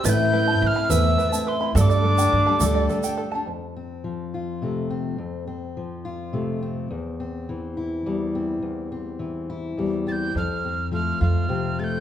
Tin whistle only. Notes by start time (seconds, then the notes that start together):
0.05 A6
0.09 G6
0.63 G6
0.67 F6
0.90 E6
1.48 C6
1.77 E6
1.81 D6
10.08 A6
10.12 G6
10.37 F6
10.94 F6
11.23 F6
11.79 A6
11.84 G6